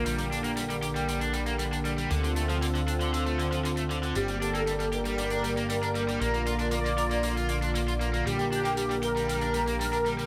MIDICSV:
0, 0, Header, 1, 6, 480
1, 0, Start_track
1, 0, Key_signature, -2, "minor"
1, 0, Tempo, 512821
1, 53, Time_signature, 4, 2, 24, 8
1, 9605, End_track
2, 0, Start_track
2, 0, Title_t, "Analog polysynth"
2, 0, Program_c, 0, 90
2, 3892, Note_on_c, 0, 67, 87
2, 4133, Note_on_c, 0, 69, 91
2, 4140, Note_off_c, 0, 67, 0
2, 4579, Note_off_c, 0, 69, 0
2, 4613, Note_on_c, 0, 70, 102
2, 5323, Note_off_c, 0, 70, 0
2, 5334, Note_on_c, 0, 70, 92
2, 5804, Note_off_c, 0, 70, 0
2, 5815, Note_on_c, 0, 70, 107
2, 6294, Note_on_c, 0, 74, 99
2, 6309, Note_off_c, 0, 70, 0
2, 7216, Note_off_c, 0, 74, 0
2, 7733, Note_on_c, 0, 67, 102
2, 7962, Note_off_c, 0, 67, 0
2, 7973, Note_on_c, 0, 67, 102
2, 8453, Note_on_c, 0, 70, 118
2, 8467, Note_off_c, 0, 67, 0
2, 9163, Note_off_c, 0, 70, 0
2, 9174, Note_on_c, 0, 70, 107
2, 9605, Note_off_c, 0, 70, 0
2, 9605, End_track
3, 0, Start_track
3, 0, Title_t, "Analog synth pad"
3, 0, Program_c, 1, 89
3, 0, Note_on_c, 1, 50, 78
3, 0, Note_on_c, 1, 58, 70
3, 0, Note_on_c, 1, 70, 85
3, 52, Note_on_c, 1, 67, 68
3, 1935, Note_off_c, 1, 70, 0
3, 1936, Note_off_c, 1, 58, 0
3, 1953, Note_off_c, 1, 67, 0
3, 1974, Note_on_c, 1, 60, 67
3, 1974, Note_on_c, 1, 65, 70
3, 1974, Note_on_c, 1, 69, 84
3, 3874, Note_off_c, 1, 60, 0
3, 3874, Note_off_c, 1, 65, 0
3, 3874, Note_off_c, 1, 69, 0
3, 3892, Note_on_c, 1, 58, 70
3, 3892, Note_on_c, 1, 67, 69
3, 3892, Note_on_c, 1, 74, 86
3, 5775, Note_off_c, 1, 50, 0
3, 5793, Note_off_c, 1, 67, 0
3, 5812, Note_on_c, 1, 50, 74
3, 5813, Note_on_c, 1, 65, 70
3, 7695, Note_off_c, 1, 58, 0
3, 7695, Note_off_c, 1, 74, 0
3, 7714, Note_off_c, 1, 65, 0
3, 7734, Note_on_c, 1, 58, 73
3, 7734, Note_on_c, 1, 67, 72
3, 7734, Note_on_c, 1, 70, 86
3, 9605, Note_off_c, 1, 50, 0
3, 9605, Note_off_c, 1, 58, 0
3, 9605, Note_off_c, 1, 67, 0
3, 9605, Note_off_c, 1, 70, 0
3, 9605, End_track
4, 0, Start_track
4, 0, Title_t, "Overdriven electric guitar"
4, 0, Program_c, 2, 29
4, 53, Note_on_c, 2, 55, 77
4, 143, Note_off_c, 2, 55, 0
4, 173, Note_on_c, 2, 55, 93
4, 233, Note_off_c, 2, 55, 0
4, 293, Note_on_c, 2, 62, 65
4, 353, Note_off_c, 2, 62, 0
4, 413, Note_on_c, 2, 58, 87
4, 473, Note_off_c, 2, 58, 0
4, 533, Note_on_c, 2, 55, 88
4, 569, Note_off_c, 2, 55, 0
4, 653, Note_on_c, 2, 55, 90
4, 689, Note_off_c, 2, 55, 0
4, 773, Note_on_c, 2, 67, 92
4, 809, Note_off_c, 2, 67, 0
4, 894, Note_on_c, 2, 55, 68
4, 984, Note_off_c, 2, 55, 0
4, 1013, Note_on_c, 2, 55, 73
4, 1103, Note_off_c, 2, 55, 0
4, 1133, Note_on_c, 2, 62, 67
4, 1223, Note_off_c, 2, 62, 0
4, 1253, Note_on_c, 2, 55, 89
4, 1313, Note_off_c, 2, 55, 0
4, 1374, Note_on_c, 2, 58, 89
4, 1434, Note_off_c, 2, 58, 0
4, 1493, Note_on_c, 2, 55, 85
4, 1529, Note_off_c, 2, 55, 0
4, 1614, Note_on_c, 2, 62, 66
4, 1650, Note_off_c, 2, 62, 0
4, 1734, Note_on_c, 2, 55, 68
4, 1794, Note_off_c, 2, 55, 0
4, 1854, Note_on_c, 2, 55, 68
4, 1944, Note_off_c, 2, 55, 0
4, 1973, Note_on_c, 2, 50, 73
4, 2063, Note_off_c, 2, 50, 0
4, 2094, Note_on_c, 2, 50, 92
4, 2154, Note_off_c, 2, 50, 0
4, 2214, Note_on_c, 2, 57, 69
4, 2274, Note_off_c, 2, 57, 0
4, 2334, Note_on_c, 2, 53, 85
4, 2394, Note_off_c, 2, 53, 0
4, 2454, Note_on_c, 2, 50, 89
4, 2490, Note_off_c, 2, 50, 0
4, 2573, Note_on_c, 2, 50, 90
4, 2609, Note_off_c, 2, 50, 0
4, 2694, Note_on_c, 2, 62, 94
4, 2730, Note_off_c, 2, 62, 0
4, 2813, Note_on_c, 2, 50, 65
4, 2903, Note_off_c, 2, 50, 0
4, 2934, Note_on_c, 2, 50, 75
4, 3023, Note_off_c, 2, 50, 0
4, 3054, Note_on_c, 2, 57, 68
4, 3144, Note_off_c, 2, 57, 0
4, 3174, Note_on_c, 2, 50, 88
4, 3234, Note_off_c, 2, 50, 0
4, 3294, Note_on_c, 2, 53, 87
4, 3354, Note_off_c, 2, 53, 0
4, 3413, Note_on_c, 2, 50, 85
4, 3449, Note_off_c, 2, 50, 0
4, 3533, Note_on_c, 2, 57, 69
4, 3569, Note_off_c, 2, 57, 0
4, 3653, Note_on_c, 2, 50, 69
4, 3713, Note_off_c, 2, 50, 0
4, 3773, Note_on_c, 2, 50, 69
4, 3863, Note_off_c, 2, 50, 0
4, 3892, Note_on_c, 2, 55, 79
4, 3983, Note_off_c, 2, 55, 0
4, 4013, Note_on_c, 2, 55, 94
4, 4073, Note_off_c, 2, 55, 0
4, 4134, Note_on_c, 2, 62, 66
4, 4193, Note_off_c, 2, 62, 0
4, 4254, Note_on_c, 2, 58, 86
4, 4313, Note_off_c, 2, 58, 0
4, 4374, Note_on_c, 2, 55, 92
4, 4410, Note_off_c, 2, 55, 0
4, 4494, Note_on_c, 2, 55, 94
4, 4529, Note_off_c, 2, 55, 0
4, 4614, Note_on_c, 2, 67, 94
4, 4650, Note_off_c, 2, 67, 0
4, 4734, Note_on_c, 2, 55, 66
4, 4823, Note_off_c, 2, 55, 0
4, 4854, Note_on_c, 2, 55, 76
4, 4944, Note_off_c, 2, 55, 0
4, 4974, Note_on_c, 2, 62, 70
4, 5064, Note_off_c, 2, 62, 0
4, 5094, Note_on_c, 2, 55, 90
4, 5154, Note_off_c, 2, 55, 0
4, 5214, Note_on_c, 2, 58, 89
4, 5274, Note_off_c, 2, 58, 0
4, 5334, Note_on_c, 2, 55, 92
4, 5369, Note_off_c, 2, 55, 0
4, 5455, Note_on_c, 2, 62, 69
4, 5490, Note_off_c, 2, 62, 0
4, 5575, Note_on_c, 2, 55, 70
4, 5634, Note_off_c, 2, 55, 0
4, 5695, Note_on_c, 2, 55, 67
4, 5784, Note_off_c, 2, 55, 0
4, 5815, Note_on_c, 2, 58, 76
4, 5904, Note_off_c, 2, 58, 0
4, 5935, Note_on_c, 2, 58, 93
4, 5994, Note_off_c, 2, 58, 0
4, 6054, Note_on_c, 2, 65, 68
4, 6114, Note_off_c, 2, 65, 0
4, 6174, Note_on_c, 2, 62, 86
4, 6234, Note_off_c, 2, 62, 0
4, 6294, Note_on_c, 2, 58, 90
4, 6330, Note_off_c, 2, 58, 0
4, 6414, Note_on_c, 2, 58, 94
4, 6449, Note_off_c, 2, 58, 0
4, 6535, Note_on_c, 2, 70, 97
4, 6570, Note_off_c, 2, 70, 0
4, 6654, Note_on_c, 2, 58, 67
4, 6744, Note_off_c, 2, 58, 0
4, 6774, Note_on_c, 2, 58, 75
4, 6864, Note_off_c, 2, 58, 0
4, 6894, Note_on_c, 2, 65, 68
4, 6984, Note_off_c, 2, 65, 0
4, 7014, Note_on_c, 2, 58, 90
4, 7074, Note_off_c, 2, 58, 0
4, 7134, Note_on_c, 2, 62, 90
4, 7194, Note_off_c, 2, 62, 0
4, 7254, Note_on_c, 2, 58, 88
4, 7290, Note_off_c, 2, 58, 0
4, 7374, Note_on_c, 2, 65, 72
4, 7410, Note_off_c, 2, 65, 0
4, 7494, Note_on_c, 2, 58, 72
4, 7553, Note_off_c, 2, 58, 0
4, 7614, Note_on_c, 2, 58, 70
4, 7704, Note_off_c, 2, 58, 0
4, 7734, Note_on_c, 2, 55, 76
4, 7824, Note_off_c, 2, 55, 0
4, 7854, Note_on_c, 2, 55, 91
4, 7913, Note_off_c, 2, 55, 0
4, 7974, Note_on_c, 2, 62, 70
4, 8034, Note_off_c, 2, 62, 0
4, 8094, Note_on_c, 2, 58, 90
4, 8154, Note_off_c, 2, 58, 0
4, 8214, Note_on_c, 2, 55, 94
4, 8250, Note_off_c, 2, 55, 0
4, 8333, Note_on_c, 2, 55, 93
4, 8369, Note_off_c, 2, 55, 0
4, 8454, Note_on_c, 2, 67, 95
4, 8489, Note_off_c, 2, 67, 0
4, 8573, Note_on_c, 2, 55, 70
4, 8663, Note_off_c, 2, 55, 0
4, 8693, Note_on_c, 2, 55, 77
4, 8783, Note_off_c, 2, 55, 0
4, 8814, Note_on_c, 2, 62, 70
4, 8904, Note_off_c, 2, 62, 0
4, 8934, Note_on_c, 2, 55, 87
4, 8994, Note_off_c, 2, 55, 0
4, 9054, Note_on_c, 2, 58, 90
4, 9114, Note_off_c, 2, 58, 0
4, 9175, Note_on_c, 2, 55, 89
4, 9210, Note_off_c, 2, 55, 0
4, 9295, Note_on_c, 2, 62, 70
4, 9330, Note_off_c, 2, 62, 0
4, 9415, Note_on_c, 2, 55, 75
4, 9474, Note_off_c, 2, 55, 0
4, 9534, Note_on_c, 2, 55, 71
4, 9605, Note_off_c, 2, 55, 0
4, 9605, End_track
5, 0, Start_track
5, 0, Title_t, "Analog synth bass"
5, 0, Program_c, 3, 38
5, 53, Note_on_c, 3, 34, 86
5, 1949, Note_off_c, 3, 34, 0
5, 1974, Note_on_c, 3, 38, 84
5, 3870, Note_off_c, 3, 38, 0
5, 3893, Note_on_c, 3, 31, 83
5, 5789, Note_off_c, 3, 31, 0
5, 5813, Note_on_c, 3, 34, 84
5, 7709, Note_off_c, 3, 34, 0
5, 7734, Note_on_c, 3, 34, 87
5, 9605, Note_off_c, 3, 34, 0
5, 9605, End_track
6, 0, Start_track
6, 0, Title_t, "Drums"
6, 54, Note_on_c, 9, 42, 86
6, 148, Note_off_c, 9, 42, 0
6, 171, Note_on_c, 9, 42, 45
6, 265, Note_off_c, 9, 42, 0
6, 302, Note_on_c, 9, 42, 65
6, 395, Note_off_c, 9, 42, 0
6, 413, Note_on_c, 9, 42, 52
6, 506, Note_off_c, 9, 42, 0
6, 531, Note_on_c, 9, 42, 93
6, 624, Note_off_c, 9, 42, 0
6, 655, Note_on_c, 9, 42, 50
6, 749, Note_off_c, 9, 42, 0
6, 771, Note_on_c, 9, 42, 66
6, 865, Note_off_c, 9, 42, 0
6, 898, Note_on_c, 9, 42, 51
6, 991, Note_off_c, 9, 42, 0
6, 1016, Note_on_c, 9, 42, 94
6, 1109, Note_off_c, 9, 42, 0
6, 1133, Note_on_c, 9, 42, 49
6, 1227, Note_off_c, 9, 42, 0
6, 1249, Note_on_c, 9, 42, 68
6, 1342, Note_off_c, 9, 42, 0
6, 1368, Note_on_c, 9, 42, 55
6, 1462, Note_off_c, 9, 42, 0
6, 1489, Note_on_c, 9, 42, 87
6, 1582, Note_off_c, 9, 42, 0
6, 1617, Note_on_c, 9, 42, 53
6, 1710, Note_off_c, 9, 42, 0
6, 1730, Note_on_c, 9, 42, 49
6, 1824, Note_off_c, 9, 42, 0
6, 1853, Note_on_c, 9, 42, 47
6, 1947, Note_off_c, 9, 42, 0
6, 1970, Note_on_c, 9, 42, 80
6, 2064, Note_off_c, 9, 42, 0
6, 2097, Note_on_c, 9, 42, 49
6, 2191, Note_off_c, 9, 42, 0
6, 2208, Note_on_c, 9, 42, 66
6, 2302, Note_off_c, 9, 42, 0
6, 2333, Note_on_c, 9, 42, 51
6, 2427, Note_off_c, 9, 42, 0
6, 2454, Note_on_c, 9, 42, 83
6, 2548, Note_off_c, 9, 42, 0
6, 2573, Note_on_c, 9, 42, 43
6, 2667, Note_off_c, 9, 42, 0
6, 2694, Note_on_c, 9, 42, 65
6, 2787, Note_off_c, 9, 42, 0
6, 2813, Note_on_c, 9, 42, 49
6, 2906, Note_off_c, 9, 42, 0
6, 2937, Note_on_c, 9, 42, 80
6, 3030, Note_off_c, 9, 42, 0
6, 3054, Note_on_c, 9, 42, 45
6, 3147, Note_off_c, 9, 42, 0
6, 3176, Note_on_c, 9, 42, 73
6, 3270, Note_off_c, 9, 42, 0
6, 3298, Note_on_c, 9, 42, 50
6, 3391, Note_off_c, 9, 42, 0
6, 3416, Note_on_c, 9, 42, 81
6, 3510, Note_off_c, 9, 42, 0
6, 3528, Note_on_c, 9, 42, 51
6, 3621, Note_off_c, 9, 42, 0
6, 3655, Note_on_c, 9, 42, 51
6, 3749, Note_off_c, 9, 42, 0
6, 3771, Note_on_c, 9, 42, 42
6, 3865, Note_off_c, 9, 42, 0
6, 3886, Note_on_c, 9, 42, 82
6, 3980, Note_off_c, 9, 42, 0
6, 4007, Note_on_c, 9, 42, 49
6, 4100, Note_off_c, 9, 42, 0
6, 4137, Note_on_c, 9, 42, 62
6, 4231, Note_off_c, 9, 42, 0
6, 4255, Note_on_c, 9, 42, 46
6, 4349, Note_off_c, 9, 42, 0
6, 4372, Note_on_c, 9, 42, 88
6, 4466, Note_off_c, 9, 42, 0
6, 4491, Note_on_c, 9, 42, 47
6, 4585, Note_off_c, 9, 42, 0
6, 4609, Note_on_c, 9, 42, 65
6, 4702, Note_off_c, 9, 42, 0
6, 4729, Note_on_c, 9, 42, 54
6, 4822, Note_off_c, 9, 42, 0
6, 4849, Note_on_c, 9, 42, 87
6, 4942, Note_off_c, 9, 42, 0
6, 4962, Note_on_c, 9, 42, 49
6, 5056, Note_off_c, 9, 42, 0
6, 5091, Note_on_c, 9, 42, 60
6, 5184, Note_off_c, 9, 42, 0
6, 5213, Note_on_c, 9, 42, 47
6, 5307, Note_off_c, 9, 42, 0
6, 5331, Note_on_c, 9, 42, 81
6, 5425, Note_off_c, 9, 42, 0
6, 5453, Note_on_c, 9, 42, 46
6, 5547, Note_off_c, 9, 42, 0
6, 5570, Note_on_c, 9, 42, 45
6, 5664, Note_off_c, 9, 42, 0
6, 5695, Note_on_c, 9, 42, 43
6, 5788, Note_off_c, 9, 42, 0
6, 5817, Note_on_c, 9, 42, 82
6, 5910, Note_off_c, 9, 42, 0
6, 5934, Note_on_c, 9, 42, 45
6, 6028, Note_off_c, 9, 42, 0
6, 6051, Note_on_c, 9, 42, 67
6, 6144, Note_off_c, 9, 42, 0
6, 6168, Note_on_c, 9, 42, 46
6, 6261, Note_off_c, 9, 42, 0
6, 6283, Note_on_c, 9, 42, 84
6, 6376, Note_off_c, 9, 42, 0
6, 6419, Note_on_c, 9, 42, 47
6, 6513, Note_off_c, 9, 42, 0
6, 6531, Note_on_c, 9, 42, 63
6, 6625, Note_off_c, 9, 42, 0
6, 6652, Note_on_c, 9, 42, 54
6, 6746, Note_off_c, 9, 42, 0
6, 6767, Note_on_c, 9, 42, 93
6, 6860, Note_off_c, 9, 42, 0
6, 6899, Note_on_c, 9, 42, 46
6, 6992, Note_off_c, 9, 42, 0
6, 7008, Note_on_c, 9, 42, 64
6, 7102, Note_off_c, 9, 42, 0
6, 7134, Note_on_c, 9, 42, 47
6, 7227, Note_off_c, 9, 42, 0
6, 7256, Note_on_c, 9, 42, 83
6, 7350, Note_off_c, 9, 42, 0
6, 7377, Note_on_c, 9, 42, 49
6, 7471, Note_off_c, 9, 42, 0
6, 7496, Note_on_c, 9, 42, 54
6, 7590, Note_off_c, 9, 42, 0
6, 7616, Note_on_c, 9, 42, 44
6, 7710, Note_off_c, 9, 42, 0
6, 7740, Note_on_c, 9, 42, 81
6, 7834, Note_off_c, 9, 42, 0
6, 7853, Note_on_c, 9, 42, 47
6, 7947, Note_off_c, 9, 42, 0
6, 7978, Note_on_c, 9, 42, 68
6, 8072, Note_off_c, 9, 42, 0
6, 8097, Note_on_c, 9, 42, 50
6, 8190, Note_off_c, 9, 42, 0
6, 8209, Note_on_c, 9, 42, 92
6, 8303, Note_off_c, 9, 42, 0
6, 8337, Note_on_c, 9, 42, 49
6, 8431, Note_off_c, 9, 42, 0
6, 8448, Note_on_c, 9, 42, 66
6, 8541, Note_off_c, 9, 42, 0
6, 8582, Note_on_c, 9, 42, 48
6, 8675, Note_off_c, 9, 42, 0
6, 8697, Note_on_c, 9, 42, 92
6, 8791, Note_off_c, 9, 42, 0
6, 8809, Note_on_c, 9, 42, 52
6, 8903, Note_off_c, 9, 42, 0
6, 8928, Note_on_c, 9, 42, 64
6, 9021, Note_off_c, 9, 42, 0
6, 9054, Note_on_c, 9, 42, 53
6, 9148, Note_off_c, 9, 42, 0
6, 9180, Note_on_c, 9, 42, 94
6, 9273, Note_off_c, 9, 42, 0
6, 9293, Note_on_c, 9, 42, 51
6, 9386, Note_off_c, 9, 42, 0
6, 9414, Note_on_c, 9, 42, 47
6, 9507, Note_off_c, 9, 42, 0
6, 9535, Note_on_c, 9, 42, 45
6, 9605, Note_off_c, 9, 42, 0
6, 9605, End_track
0, 0, End_of_file